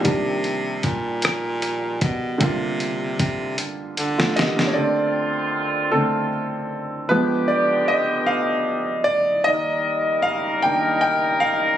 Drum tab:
HH |x-x-x-x-x-x-|x-x-x-x-x-x-|------------|------------|
SD |------r-----|---------ooo|------------|------------|
BD |o---o-----o-|o---o-------|------------|------------|

HH |------------|
SD |------------|
BD |------------|